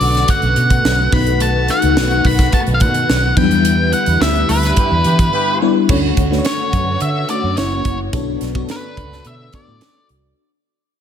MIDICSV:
0, 0, Header, 1, 7, 480
1, 0, Start_track
1, 0, Key_signature, 2, "minor"
1, 0, Tempo, 560748
1, 1203, Time_signature, 4, 2, 24, 8
1, 9417, End_track
2, 0, Start_track
2, 0, Title_t, "Lead electric guitar"
2, 0, Program_c, 0, 29
2, 0, Note_on_c, 0, 74, 89
2, 256, Note_on_c, 0, 78, 110
2, 262, Note_off_c, 0, 74, 0
2, 970, Note_on_c, 0, 83, 110
2, 991, Note_off_c, 0, 78, 0
2, 1211, Note_off_c, 0, 83, 0
2, 1214, Note_on_c, 0, 81, 113
2, 1455, Note_off_c, 0, 81, 0
2, 1458, Note_on_c, 0, 78, 98
2, 1937, Note_on_c, 0, 83, 108
2, 1944, Note_off_c, 0, 78, 0
2, 2154, Note_off_c, 0, 83, 0
2, 2172, Note_on_c, 0, 81, 104
2, 2219, Note_off_c, 0, 81, 0
2, 2349, Note_on_c, 0, 77, 76
2, 2406, Note_off_c, 0, 77, 0
2, 2412, Note_on_c, 0, 78, 100
2, 2854, Note_off_c, 0, 78, 0
2, 2890, Note_on_c, 0, 79, 110
2, 3364, Note_off_c, 0, 79, 0
2, 3367, Note_on_c, 0, 78, 88
2, 3606, Note_off_c, 0, 78, 0
2, 3610, Note_on_c, 0, 76, 102
2, 3843, Note_on_c, 0, 71, 85
2, 3853, Note_off_c, 0, 76, 0
2, 4768, Note_off_c, 0, 71, 0
2, 5528, Note_on_c, 0, 73, 80
2, 6005, Note_off_c, 0, 73, 0
2, 6008, Note_on_c, 0, 76, 117
2, 6246, Note_off_c, 0, 76, 0
2, 6249, Note_on_c, 0, 74, 90
2, 6485, Note_off_c, 0, 74, 0
2, 6489, Note_on_c, 0, 73, 82
2, 6820, Note_off_c, 0, 73, 0
2, 7458, Note_on_c, 0, 71, 87
2, 7935, Note_on_c, 0, 76, 109
2, 7944, Note_off_c, 0, 71, 0
2, 8170, Note_off_c, 0, 76, 0
2, 8174, Note_on_c, 0, 74, 88
2, 8614, Note_off_c, 0, 74, 0
2, 9417, End_track
3, 0, Start_track
3, 0, Title_t, "Horn section"
3, 0, Program_c, 1, 61
3, 4091, Note_on_c, 1, 64, 83
3, 4091, Note_on_c, 1, 67, 79
3, 4091, Note_on_c, 1, 71, 83
3, 4189, Note_off_c, 1, 64, 0
3, 4189, Note_off_c, 1, 71, 0
3, 4190, Note_off_c, 1, 67, 0
3, 4330, Note_on_c, 1, 67, 81
3, 4330, Note_on_c, 1, 71, 91
3, 4331, Note_on_c, 1, 64, 78
3, 4429, Note_off_c, 1, 67, 0
3, 4429, Note_off_c, 1, 71, 0
3, 4430, Note_off_c, 1, 64, 0
3, 4561, Note_on_c, 1, 64, 104
3, 4561, Note_on_c, 1, 67, 103
3, 4565, Note_on_c, 1, 71, 112
3, 4904, Note_off_c, 1, 64, 0
3, 4904, Note_off_c, 1, 67, 0
3, 4906, Note_off_c, 1, 71, 0
3, 9417, End_track
4, 0, Start_track
4, 0, Title_t, "FM electric piano"
4, 0, Program_c, 2, 5
4, 0, Control_c, 2, 64, 127
4, 0, Note_on_c, 2, 57, 75
4, 0, Note_on_c, 2, 61, 71
4, 0, Note_on_c, 2, 62, 75
4, 0, Note_on_c, 2, 66, 72
4, 0, Note_on_c, 2, 71, 83
4, 956, Note_off_c, 2, 57, 0
4, 956, Note_on_c, 2, 57, 77
4, 959, Note_on_c, 2, 59, 62
4, 961, Note_on_c, 2, 63, 71
4, 963, Note_off_c, 2, 66, 0
4, 963, Note_on_c, 2, 66, 66
4, 965, Note_off_c, 2, 71, 0
4, 965, Note_on_c, 2, 71, 90
4, 973, Note_off_c, 2, 62, 0
4, 973, Control_c, 2, 64, 0
4, 981, Note_off_c, 2, 61, 0
4, 1122, Control_c, 2, 64, 127
4, 1727, Note_off_c, 2, 57, 0
4, 1729, Note_off_c, 2, 59, 0
4, 1730, Note_off_c, 2, 63, 0
4, 1731, Note_off_c, 2, 66, 0
4, 1732, Note_off_c, 2, 71, 0
4, 2879, Note_on_c, 2, 54, 63
4, 2881, Note_on_c, 2, 59, 70
4, 2883, Note_on_c, 2, 62, 67
4, 2887, Note_on_c, 2, 64, 69
4, 2890, Note_on_c, 2, 71, 80
4, 2895, Control_c, 2, 64, 0
4, 2935, Note_on_c, 2, 55, 79
4, 2937, Note_off_c, 2, 54, 0
4, 3066, Control_c, 2, 64, 127
4, 3650, Note_off_c, 2, 59, 0
4, 3651, Note_off_c, 2, 62, 0
4, 3653, Note_off_c, 2, 64, 0
4, 3655, Note_off_c, 2, 71, 0
4, 3677, Note_off_c, 2, 55, 0
4, 4800, Note_on_c, 2, 55, 77
4, 4803, Note_on_c, 2, 59, 67
4, 4805, Note_on_c, 2, 62, 81
4, 4809, Note_on_c, 2, 64, 78
4, 4811, Note_on_c, 2, 71, 92
4, 4963, Note_off_c, 2, 55, 0
4, 4965, Note_off_c, 2, 59, 0
4, 4965, Note_off_c, 2, 62, 0
4, 4968, Note_off_c, 2, 64, 0
4, 4968, Note_off_c, 2, 71, 0
4, 5041, Note_on_c, 2, 57, 90
4, 5044, Note_on_c, 2, 61, 93
4, 5047, Note_on_c, 2, 62, 87
4, 5047, Note_on_c, 2, 66, 85
4, 5051, Note_on_c, 2, 73, 101
4, 5052, Control_c, 2, 64, 0
4, 5197, Control_c, 2, 64, 127
4, 5284, Note_off_c, 2, 57, 0
4, 5286, Note_off_c, 2, 61, 0
4, 5287, Note_off_c, 2, 62, 0
4, 5287, Note_off_c, 2, 66, 0
4, 5289, Note_off_c, 2, 73, 0
4, 5400, Note_on_c, 2, 57, 78
4, 5403, Note_on_c, 2, 61, 68
4, 5404, Note_on_c, 2, 62, 74
4, 5407, Note_on_c, 2, 66, 74
4, 5411, Note_on_c, 2, 71, 67
4, 5462, Note_off_c, 2, 71, 0
4, 5466, Note_on_c, 2, 73, 85
4, 5967, Note_off_c, 2, 57, 0
4, 5969, Note_off_c, 2, 61, 0
4, 5969, Note_off_c, 2, 62, 0
4, 5971, Note_off_c, 2, 66, 0
4, 6000, Note_off_c, 2, 73, 0
4, 6240, Note_on_c, 2, 57, 83
4, 6243, Note_on_c, 2, 62, 80
4, 6244, Note_on_c, 2, 61, 75
4, 6249, Note_on_c, 2, 66, 78
4, 6250, Note_on_c, 2, 73, 89
4, 6472, Note_off_c, 2, 61, 0
4, 6477, Note_off_c, 2, 66, 0
4, 6480, Note_off_c, 2, 73, 0
4, 6480, Note_on_c, 2, 58, 84
4, 6481, Note_off_c, 2, 57, 0
4, 6482, Note_on_c, 2, 61, 72
4, 6483, Note_off_c, 2, 62, 0
4, 6485, Note_on_c, 2, 64, 77
4, 6488, Note_on_c, 2, 66, 68
4, 6490, Note_on_c, 2, 73, 92
4, 6494, Control_c, 2, 64, 0
4, 6635, Control_c, 2, 64, 127
4, 6865, Note_off_c, 2, 58, 0
4, 6866, Note_off_c, 2, 61, 0
4, 6867, Note_off_c, 2, 64, 0
4, 6869, Note_off_c, 2, 66, 0
4, 6870, Note_off_c, 2, 73, 0
4, 6959, Note_on_c, 2, 59, 94
4, 6963, Note_on_c, 2, 62, 80
4, 6963, Note_on_c, 2, 66, 93
4, 6967, Note_on_c, 2, 69, 82
4, 6969, Note_on_c, 2, 73, 103
4, 6973, Control_c, 2, 64, 0
4, 7124, Control_c, 2, 64, 127
4, 7203, Note_off_c, 2, 59, 0
4, 7205, Note_off_c, 2, 62, 0
4, 7205, Note_off_c, 2, 66, 0
4, 7207, Note_off_c, 2, 69, 0
4, 7208, Note_off_c, 2, 73, 0
4, 7317, Note_on_c, 2, 59, 74
4, 7320, Note_on_c, 2, 62, 70
4, 7322, Note_on_c, 2, 66, 71
4, 7323, Note_on_c, 2, 69, 67
4, 7326, Note_on_c, 2, 73, 82
4, 7885, Note_off_c, 2, 59, 0
4, 7887, Note_off_c, 2, 62, 0
4, 7888, Note_off_c, 2, 66, 0
4, 7888, Note_off_c, 2, 69, 0
4, 7890, Note_off_c, 2, 73, 0
4, 8152, Note_on_c, 2, 59, 80
4, 8154, Note_on_c, 2, 62, 69
4, 8157, Note_on_c, 2, 66, 75
4, 8161, Note_on_c, 2, 69, 73
4, 8165, Note_on_c, 2, 74, 92
4, 8641, Note_off_c, 2, 59, 0
4, 8643, Note_off_c, 2, 62, 0
4, 8644, Note_off_c, 2, 66, 0
4, 8646, Note_off_c, 2, 69, 0
4, 8648, Note_off_c, 2, 74, 0
4, 8894, Control_c, 2, 64, 0
4, 9417, End_track
5, 0, Start_track
5, 0, Title_t, "String section"
5, 0, Program_c, 3, 48
5, 0, Note_on_c, 3, 50, 75
5, 0, Note_on_c, 3, 57, 69
5, 0, Note_on_c, 3, 59, 77
5, 0, Note_on_c, 3, 66, 85
5, 948, Note_off_c, 3, 66, 0
5, 950, Note_off_c, 3, 50, 0
5, 965, Note_on_c, 3, 66, 92
5, 968, Note_on_c, 3, 51, 86
5, 2851, Note_off_c, 3, 57, 0
5, 2865, Note_off_c, 3, 66, 0
5, 2866, Note_off_c, 3, 51, 0
5, 2885, Note_on_c, 3, 50, 82
5, 2888, Note_on_c, 3, 64, 96
5, 2891, Note_on_c, 3, 55, 76
5, 5010, Note_off_c, 3, 59, 0
5, 5022, Note_off_c, 3, 50, 0
5, 5023, Note_off_c, 3, 64, 0
5, 5025, Note_off_c, 3, 55, 0
5, 5045, Note_on_c, 3, 57, 74
5, 5047, Note_on_c, 3, 66, 87
5, 5048, Note_on_c, 3, 50, 86
5, 5049, Note_on_c, 3, 73, 77
5, 6469, Note_off_c, 3, 57, 0
5, 6470, Note_off_c, 3, 50, 0
5, 6483, Note_on_c, 3, 58, 63
5, 6485, Note_on_c, 3, 52, 70
5, 6944, Note_off_c, 3, 66, 0
5, 6946, Note_off_c, 3, 73, 0
5, 6953, Note_on_c, 3, 57, 76
5, 6955, Note_on_c, 3, 62, 96
5, 6957, Note_off_c, 3, 58, 0
5, 6957, Note_on_c, 3, 59, 75
5, 6958, Note_off_c, 3, 52, 0
5, 6958, Note_on_c, 3, 50, 90
5, 8857, Note_off_c, 3, 57, 0
5, 8858, Note_off_c, 3, 62, 0
5, 8859, Note_off_c, 3, 50, 0
5, 8859, Note_off_c, 3, 59, 0
5, 9417, End_track
6, 0, Start_track
6, 0, Title_t, "Fingered electric bass"
6, 0, Program_c, 4, 33
6, 5, Note_on_c, 4, 35, 94
6, 194, Note_off_c, 4, 35, 0
6, 367, Note_on_c, 4, 35, 93
6, 461, Note_off_c, 4, 35, 0
6, 486, Note_on_c, 4, 47, 92
6, 675, Note_off_c, 4, 47, 0
6, 727, Note_on_c, 4, 35, 101
6, 915, Note_off_c, 4, 35, 0
6, 964, Note_on_c, 4, 35, 94
6, 1439, Note_off_c, 4, 35, 0
6, 1569, Note_on_c, 4, 37, 97
6, 1688, Note_off_c, 4, 37, 0
6, 1688, Note_on_c, 4, 35, 96
6, 1877, Note_off_c, 4, 35, 0
6, 1925, Note_on_c, 4, 35, 84
6, 2114, Note_off_c, 4, 35, 0
6, 2289, Note_on_c, 4, 35, 102
6, 2407, Note_on_c, 4, 47, 96
6, 2420, Note_off_c, 4, 35, 0
6, 2595, Note_off_c, 4, 47, 0
6, 2648, Note_on_c, 4, 35, 100
6, 2836, Note_off_c, 4, 35, 0
6, 2884, Note_on_c, 4, 40, 104
6, 3359, Note_off_c, 4, 40, 0
6, 3485, Note_on_c, 4, 40, 94
6, 3579, Note_off_c, 4, 40, 0
6, 3602, Note_on_c, 4, 38, 99
6, 3792, Note_off_c, 4, 38, 0
6, 3845, Note_on_c, 4, 38, 85
6, 4035, Note_off_c, 4, 38, 0
6, 4206, Note_on_c, 4, 40, 93
6, 4300, Note_off_c, 4, 40, 0
6, 4324, Note_on_c, 4, 52, 88
6, 4514, Note_off_c, 4, 52, 0
6, 5044, Note_on_c, 4, 38, 108
6, 5234, Note_off_c, 4, 38, 0
6, 5285, Note_on_c, 4, 38, 90
6, 5474, Note_off_c, 4, 38, 0
6, 5764, Note_on_c, 4, 42, 101
6, 5953, Note_off_c, 4, 42, 0
6, 6003, Note_on_c, 4, 50, 101
6, 6193, Note_off_c, 4, 50, 0
6, 6364, Note_on_c, 4, 42, 90
6, 6458, Note_off_c, 4, 42, 0
6, 6483, Note_on_c, 4, 30, 102
6, 6673, Note_off_c, 4, 30, 0
6, 6721, Note_on_c, 4, 30, 96
6, 6912, Note_off_c, 4, 30, 0
6, 6962, Note_on_c, 4, 35, 108
6, 7152, Note_off_c, 4, 35, 0
6, 7202, Note_on_c, 4, 35, 96
6, 7392, Note_off_c, 4, 35, 0
6, 7682, Note_on_c, 4, 37, 99
6, 7872, Note_off_c, 4, 37, 0
6, 7920, Note_on_c, 4, 47, 104
6, 8111, Note_off_c, 4, 47, 0
6, 8283, Note_on_c, 4, 45, 80
6, 8377, Note_off_c, 4, 45, 0
6, 8644, Note_on_c, 4, 36, 78
6, 8833, Note_off_c, 4, 36, 0
6, 9417, End_track
7, 0, Start_track
7, 0, Title_t, "Drums"
7, 6, Note_on_c, 9, 46, 68
7, 91, Note_off_c, 9, 46, 0
7, 125, Note_on_c, 9, 42, 52
7, 135, Note_on_c, 9, 38, 37
7, 211, Note_off_c, 9, 42, 0
7, 220, Note_off_c, 9, 38, 0
7, 240, Note_on_c, 9, 42, 93
7, 244, Note_on_c, 9, 36, 93
7, 325, Note_off_c, 9, 42, 0
7, 330, Note_off_c, 9, 36, 0
7, 359, Note_on_c, 9, 42, 35
7, 445, Note_off_c, 9, 42, 0
7, 480, Note_on_c, 9, 42, 80
7, 566, Note_off_c, 9, 42, 0
7, 602, Note_on_c, 9, 42, 56
7, 603, Note_on_c, 9, 36, 84
7, 688, Note_off_c, 9, 42, 0
7, 689, Note_off_c, 9, 36, 0
7, 729, Note_on_c, 9, 38, 111
7, 814, Note_off_c, 9, 38, 0
7, 961, Note_on_c, 9, 46, 71
7, 963, Note_on_c, 9, 36, 103
7, 1047, Note_off_c, 9, 46, 0
7, 1048, Note_off_c, 9, 36, 0
7, 1083, Note_on_c, 9, 42, 55
7, 1169, Note_off_c, 9, 42, 0
7, 1202, Note_on_c, 9, 42, 99
7, 1288, Note_off_c, 9, 42, 0
7, 1441, Note_on_c, 9, 42, 59
7, 1451, Note_on_c, 9, 38, 31
7, 1527, Note_off_c, 9, 42, 0
7, 1537, Note_off_c, 9, 38, 0
7, 1558, Note_on_c, 9, 42, 58
7, 1644, Note_off_c, 9, 42, 0
7, 1686, Note_on_c, 9, 38, 118
7, 1771, Note_off_c, 9, 38, 0
7, 1803, Note_on_c, 9, 42, 35
7, 1889, Note_off_c, 9, 42, 0
7, 1924, Note_on_c, 9, 36, 76
7, 1924, Note_on_c, 9, 46, 71
7, 2009, Note_off_c, 9, 36, 0
7, 2010, Note_off_c, 9, 46, 0
7, 2044, Note_on_c, 9, 36, 94
7, 2044, Note_on_c, 9, 42, 55
7, 2053, Note_on_c, 9, 38, 34
7, 2130, Note_off_c, 9, 36, 0
7, 2130, Note_off_c, 9, 42, 0
7, 2139, Note_off_c, 9, 38, 0
7, 2161, Note_on_c, 9, 42, 82
7, 2165, Note_on_c, 9, 36, 87
7, 2246, Note_off_c, 9, 42, 0
7, 2251, Note_off_c, 9, 36, 0
7, 2282, Note_on_c, 9, 42, 39
7, 2368, Note_off_c, 9, 42, 0
7, 2398, Note_on_c, 9, 42, 68
7, 2405, Note_on_c, 9, 36, 93
7, 2484, Note_off_c, 9, 42, 0
7, 2490, Note_off_c, 9, 36, 0
7, 2520, Note_on_c, 9, 42, 62
7, 2605, Note_off_c, 9, 42, 0
7, 2650, Note_on_c, 9, 38, 102
7, 2736, Note_off_c, 9, 38, 0
7, 2883, Note_on_c, 9, 36, 109
7, 2883, Note_on_c, 9, 49, 73
7, 2968, Note_off_c, 9, 36, 0
7, 2969, Note_off_c, 9, 49, 0
7, 3004, Note_on_c, 9, 42, 52
7, 3090, Note_off_c, 9, 42, 0
7, 3123, Note_on_c, 9, 42, 101
7, 3208, Note_off_c, 9, 42, 0
7, 3360, Note_on_c, 9, 42, 66
7, 3446, Note_off_c, 9, 42, 0
7, 3478, Note_on_c, 9, 42, 58
7, 3564, Note_off_c, 9, 42, 0
7, 3609, Note_on_c, 9, 38, 122
7, 3694, Note_off_c, 9, 38, 0
7, 3725, Note_on_c, 9, 42, 36
7, 3810, Note_off_c, 9, 42, 0
7, 3844, Note_on_c, 9, 46, 67
7, 3929, Note_off_c, 9, 46, 0
7, 3963, Note_on_c, 9, 42, 54
7, 3973, Note_on_c, 9, 38, 36
7, 4049, Note_off_c, 9, 42, 0
7, 4058, Note_off_c, 9, 38, 0
7, 4078, Note_on_c, 9, 42, 89
7, 4084, Note_on_c, 9, 36, 96
7, 4164, Note_off_c, 9, 42, 0
7, 4169, Note_off_c, 9, 36, 0
7, 4318, Note_on_c, 9, 42, 71
7, 4404, Note_off_c, 9, 42, 0
7, 4442, Note_on_c, 9, 36, 88
7, 4442, Note_on_c, 9, 42, 61
7, 4527, Note_off_c, 9, 42, 0
7, 4528, Note_off_c, 9, 36, 0
7, 5042, Note_on_c, 9, 57, 97
7, 5043, Note_on_c, 9, 36, 114
7, 5128, Note_off_c, 9, 36, 0
7, 5128, Note_off_c, 9, 57, 0
7, 5281, Note_on_c, 9, 42, 61
7, 5284, Note_on_c, 9, 36, 94
7, 5366, Note_off_c, 9, 42, 0
7, 5369, Note_off_c, 9, 36, 0
7, 5413, Note_on_c, 9, 38, 34
7, 5499, Note_off_c, 9, 38, 0
7, 5518, Note_on_c, 9, 42, 93
7, 5529, Note_on_c, 9, 38, 118
7, 5604, Note_off_c, 9, 42, 0
7, 5614, Note_off_c, 9, 38, 0
7, 5761, Note_on_c, 9, 36, 84
7, 5763, Note_on_c, 9, 42, 73
7, 5847, Note_off_c, 9, 36, 0
7, 5849, Note_off_c, 9, 42, 0
7, 5996, Note_on_c, 9, 42, 86
7, 6082, Note_off_c, 9, 42, 0
7, 6238, Note_on_c, 9, 42, 81
7, 6323, Note_off_c, 9, 42, 0
7, 6480, Note_on_c, 9, 42, 79
7, 6488, Note_on_c, 9, 38, 110
7, 6566, Note_off_c, 9, 42, 0
7, 6573, Note_off_c, 9, 38, 0
7, 6719, Note_on_c, 9, 42, 65
7, 6720, Note_on_c, 9, 36, 89
7, 6805, Note_off_c, 9, 42, 0
7, 6806, Note_off_c, 9, 36, 0
7, 6960, Note_on_c, 9, 36, 122
7, 6960, Note_on_c, 9, 42, 94
7, 7045, Note_off_c, 9, 42, 0
7, 7046, Note_off_c, 9, 36, 0
7, 7198, Note_on_c, 9, 42, 63
7, 7208, Note_on_c, 9, 38, 32
7, 7284, Note_off_c, 9, 42, 0
7, 7293, Note_off_c, 9, 38, 0
7, 7319, Note_on_c, 9, 36, 98
7, 7405, Note_off_c, 9, 36, 0
7, 7435, Note_on_c, 9, 42, 89
7, 7446, Note_on_c, 9, 38, 125
7, 7521, Note_off_c, 9, 42, 0
7, 7532, Note_off_c, 9, 38, 0
7, 7680, Note_on_c, 9, 36, 73
7, 7681, Note_on_c, 9, 42, 74
7, 7766, Note_off_c, 9, 36, 0
7, 7767, Note_off_c, 9, 42, 0
7, 7809, Note_on_c, 9, 38, 35
7, 7895, Note_off_c, 9, 38, 0
7, 7914, Note_on_c, 9, 42, 87
7, 8000, Note_off_c, 9, 42, 0
7, 8154, Note_on_c, 9, 42, 78
7, 8162, Note_on_c, 9, 36, 102
7, 8240, Note_off_c, 9, 42, 0
7, 8248, Note_off_c, 9, 36, 0
7, 8398, Note_on_c, 9, 42, 86
7, 8405, Note_on_c, 9, 38, 119
7, 8483, Note_off_c, 9, 42, 0
7, 8491, Note_off_c, 9, 38, 0
7, 8638, Note_on_c, 9, 42, 65
7, 8723, Note_off_c, 9, 42, 0
7, 9417, End_track
0, 0, End_of_file